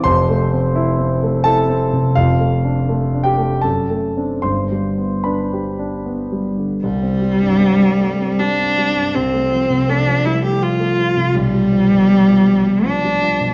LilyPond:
<<
  \new Staff \with { instrumentName = "Cello" } { \time 3/4 \key g \mixolydian \tempo 4 = 81 r2. | r2. | r2. | g2 d'4 |
c'4 d'8 e'16 g'16 f'4 | g2 d'4 | }
  \new Staff \with { instrumentName = "Grand piano" } { \time 3/4 \key g \mixolydian <c'' c'''>2 <a' a''>4 | <f' f''>4. <g' g''>8 <a' a''>4 | <c'' c'''>4 <b' b''>4. r8 | r2. |
r2. | r2. | }
  \new Staff \with { instrumentName = "Grand piano" } { \clef bass \time 3/4 \key g \mixolydian \tuplet 3/2 { <f,, f,>8 a8 c'8 e'8 c'8 a8 e'8 c'8 c8 } | \tuplet 3/2 { <f,, f,>8 a8 d'8 a8 d'8 a8 fis,8 a8 <c' d'>8 } | \tuplet 3/2 { <g,, g,>8 g8 b8 d'8 g'8 d'8 b8 g8 d8 } | c,16 c'16 g16 g,16 c'16 g16 a16 c'16 g16 c'16 g16 g,16 |
c,16 a16 f16 c16 a16 f16 g16 a16 f16 a16 f16 c16 | b,,16 g16 f16 b,16 g16 f16 g16 g16 f16 g16 f16 b,16 | }
>>